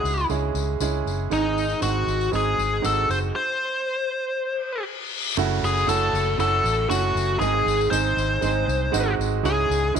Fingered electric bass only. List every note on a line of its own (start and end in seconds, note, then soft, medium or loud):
0.03 0.25 C#2 medium
0.30 0.50 C#2 medium
0.54 0.75 C#2 medium
0.80 1.01 C#2 medium
1.06 1.27 F#1 medium
1.31 1.73 G#1 medium
1.82 2.03 G#1 medium
2.07 2.28 G#1 medium
2.33 2.54 G#1 medium
2.58 2.79 G#1 medium
2.84 3.05 G#1 medium
3.09 3.30 F#1 medium
5.37 5.58 F#1 medium
5.63 5.84 F#1 medium
5.87 6.09 F#1 medium
6.13 6.34 F#1 medium
6.38 6.60 F#1 loud
6.64 6.85 A1 medium
6.90 7.11 F#1 medium
7.15 7.36 F#1 medium
7.40 7.61 G#1 medium
7.66 7.87 G#1 medium
7.92 8.13 G#1 medium
8.17 8.38 G#1 medium
8.42 8.63 G#1 loud
8.67 8.89 C2 medium
8.93 9.14 G#1 medium
9.19 9.40 G#1 medium
9.44 9.65 C#2 loud
9.69 9.91 C#2 medium
9.95 10.00 C#2 medium